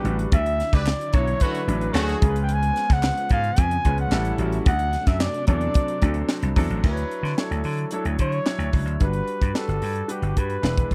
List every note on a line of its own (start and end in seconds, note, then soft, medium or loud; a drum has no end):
0.00 0.30 D3 medium
0.00 0.05 G3 medium
0.00 0.30 G3 medium
0.00 0.31 B3 medium
0.00 0.05 D4 medium
0.00 0.06 F#4 medium
0.00 0.20 G4 medium
0.00 0.06 B4 medium
0.00 0.30 F#5 medium
0.04 0.24 A1 medium
0.04 0.32 G3 medium
0.04 0.32 D4 medium
0.04 0.33 F#4 medium
0.04 0.33 B4 medium
0.04 closed hi-hat medium
0.19 closed hi-hat medium
0.32 0.61 D2 loud
0.32 2.20 D3 medium
0.32 2.20 F#3 medium
0.32 2.20 D4 medium
0.32 2.20 E4 medium
0.32 0.76 E5 loud
0.32 kick loud
0.32 closed hi-hat medium
0.46 closed hi-hat medium
0.60 snare soft
0.60 closed hi-hat medium
0.73 0.92 C#2 medium
0.73 0.84 E4 medium
0.73 0.84 G4 medium
0.73 0.84 B4 loud
0.73 1.16 D5 loud
0.73 kick loud
0.73 snare soft
0.73 closed hi-hat medium
0.86 snare loud
0.86 clap medium
1.01 closed hi-hat soft
1.13 1.33 B1 medium
1.13 1.54 F#3 medium
1.13 1.54 D4 medium
1.13 1.54 E4 medium
1.13 1.25 E4 medium
1.13 1.25 F#4 medium
1.13 1.25 A4 medium
1.13 1.55 C#5 medium
1.13 1.44 C#5 loud
1.13 kick loud
1.13 closed hi-hat medium
1.27 closed hi-hat soft
1.40 1.62 A3 loud
1.40 1.62 C#4 loud
1.40 1.62 F#4 loud
1.40 1.99 B4 medium
1.40 kick loud
1.40 closed hi-hat loud
1.55 closed hi-hat medium
1.68 1.87 A1 medium
1.68 2.08 F#3 medium
1.68 2.09 D4 medium
1.68 2.09 E4 medium
1.68 2.09 B4 medium
1.68 closed hi-hat medium
1.81 closed hi-hat soft
1.94 2.13 D2 loud
1.94 2.16 A3 loud
1.94 2.16 C#4 loud
1.94 2.16 F#4 loud
1.94 snare loud
1.94 clap medium
1.98 2.37 G#4 medium
2.09 closed hi-hat medium
2.22 2.70 C#2 loud
2.22 4.64 C#3 medium
2.22 4.10 F3 medium
2.22 3.09 G#3 medium
2.22 4.10 G#3 medium
2.22 4.10 B3 medium
2.22 3.09 C#4 medium
2.22 3.09 F4 medium
2.22 2.29 A#4 medium
2.22 kick loud
2.22 closed hi-hat medium
2.29 3.13 B4 medium
2.36 closed hi-hat medium
2.43 2.55 G5 medium
2.49 closed hi-hat medium
2.53 2.95 G#5 loud
2.63 closed hi-hat medium
2.76 snare soft
2.76 closed hi-hat medium
2.90 3.09 C#2 medium
2.90 3.32 F#5 loud
2.90 kick loud
2.90 snare soft
2.90 closed hi-hat medium
3.03 snare loud
3.03 clap medium
3.17 closed hi-hat medium
3.29 3.50 G#2 medium
3.29 3.62 F5 loud
3.29 kick medium
3.29 closed hi-hat medium
3.44 closed hi-hat soft
3.56 3.77 F2 medium
3.56 kick loud
3.56 closed hi-hat loud
3.60 4.00 G#5 loud
3.71 closed hi-hat medium
3.85 4.04 C#2 medium
3.85 4.05 G#3 medium
3.85 4.06 C#4 medium
3.85 4.06 F4 medium
3.85 4.06 B4 medium
3.85 kick medium
3.85 closed hi-hat medium
3.98 4.38 F#5 medium
3.98 closed hi-hat soft
4.11 4.31 A1 loud
4.11 4.32 G3 medium
4.11 4.67 G3 medium
4.11 6.82 A3 medium
4.11 4.33 C#4 medium
4.11 4.33 E4 medium
4.11 4.67 E4 medium
4.11 4.33 A4 medium
4.11 snare medium
4.11 clap medium
4.25 closed hi-hat soft
4.38 4.58 A1 medium
4.38 4.66 G3 medium
4.38 4.66 C#4 medium
4.38 4.67 E4 medium
4.38 4.67 F#4 medium
4.38 closed hi-hat medium
4.52 closed hi-hat medium
4.66 4.95 D2 medium
4.66 6.82 C3 medium
4.66 6.82 F#3 medium
4.66 6.83 D4 medium
4.66 5.09 F#5 loud
4.66 kick loud
4.66 closed hi-hat medium
4.79 closed hi-hat medium
4.93 snare soft
4.93 closed hi-hat medium
5.07 5.26 F#2 medium
5.07 5.23 E5 medium
5.07 kick medium
5.07 snare soft
5.07 closed hi-hat medium
5.20 5.47 D5 medium
5.20 snare loud
5.20 clap medium
5.34 closed hi-hat medium
5.47 5.67 E2 medium
5.47 5.88 F#3 medium
5.47 5.88 C4 medium
5.47 5.89 D4 medium
5.47 5.89 A4 medium
5.47 6.26 D5 loud
5.47 kick medium
5.47 closed hi-hat medium
5.61 closed hi-hat soft
5.74 kick loud
5.74 closed hi-hat loud
5.88 closed hi-hat medium
6.02 6.21 D2 medium
6.02 6.43 F#3 medium
6.02 6.43 C4 medium
6.02 6.43 D4 medium
6.02 6.44 A4 medium
6.02 kick medium
6.02 closed hi-hat medium
6.14 closed hi-hat soft
6.29 snare medium
6.29 clap medium
6.42 6.52 C2 medium
6.42 closed hi-hat medium
6.56 6.66 E2 loud
6.56 6.77 F#3 medium
6.56 6.77 C4 medium
6.56 6.77 D4 medium
6.56 6.78 A4 medium
6.56 kick loud
6.56 open hi-hat medium
6.70 6.80 A1 medium
6.70 closed hi-hat medium
6.84 7.03 D2 medium
6.84 7.25 F#3 medium
6.84 7.25 D4 medium
6.84 7.25 E4 medium
6.84 6.91 B4 medium
6.84 7.42 B4 medium
6.84 kick loud
6.84 crash medium
6.91 7.28 C#5 medium
6.97 closed hi-hat medium
7.11 closed hi-hat medium
7.23 7.33 D3 medium
7.23 snare soft
7.23 closed hi-hat soft
7.37 7.79 F#3 medium
7.37 7.79 D4 medium
7.37 7.79 E4 medium
7.37 7.93 A4 medium
7.37 7.79 C#5 medium
7.37 snare loud
7.37 clap medium
7.51 7.61 D2 medium
7.51 closed hi-hat soft
7.64 7.84 D3 medium
7.64 open hi-hat medium
7.78 closed hi-hat soft
7.91 8.33 F#3 medium
7.91 8.33 D4 medium
7.91 8.33 E4 medium
7.91 8.06 A4 medium
7.91 8.34 C#5 medium
7.91 closed hi-hat loud
8.05 8.15 D2 medium
8.05 closed hi-hat soft
8.19 8.39 D3 medium
8.19 8.71 C#5 loud
8.19 kick medium
8.19 closed hi-hat medium
8.32 closed hi-hat soft
8.46 8.87 F#3 medium
8.46 8.87 D4 medium
8.46 8.87 E4 medium
8.46 8.88 C#5 loud
8.46 snare loud
8.46 clap medium
8.58 8.69 D2 medium
8.58 closed hi-hat medium
8.73 8.85 C#2 medium
8.73 kick medium
8.73 open hi-hat medium
8.85 8.96 D2 medium
8.85 closed hi-hat medium
9.00 9.20 G1 medium
9.00 9.41 G3 medium
9.00 9.42 D4 medium
9.00 9.42 F#4 medium
9.00 9.42 B4 medium
9.00 9.58 B4 loud
9.00 kick medium
9.00 closed hi-hat medium
9.13 closed hi-hat soft
9.27 closed hi-hat medium
9.41 9.51 G2 medium
9.41 kick medium
9.41 closed hi-hat medium
9.54 9.95 G3 medium
9.54 9.96 D4 medium
9.54 9.96 F#4 medium
9.54 10.13 A4 medium
9.54 9.96 B4 medium
9.54 snare loud
9.54 clap medium
9.68 9.78 G1 medium
9.68 closed hi-hat soft
9.82 10.01 G2 medium
9.82 open hi-hat medium
9.96 closed hi-hat soft
10.08 10.50 G3 medium
10.08 10.50 D4 medium
10.08 10.50 F#4 medium
10.08 10.40 G4 medium
10.08 10.50 B4 medium
10.08 closed hi-hat loud
10.22 10.32 G1 loud
10.22 closed hi-hat soft
10.36 10.56 G2 medium
10.36 10.92 B4 loud
10.36 kick medium
10.36 closed hi-hat medium
10.50 closed hi-hat soft
10.62 10.83 E1 loud
10.62 10.95 G#3 medium
10.62 10.95 D4 medium
10.62 10.95 E4 medium
10.62 10.95 B4 medium
10.62 snare medium
10.62 clap medium
10.78 kick loud
10.78 closed hi-hat soft
10.91 10.95 E1 medium
10.91 kick medium
10.91 open hi-hat medium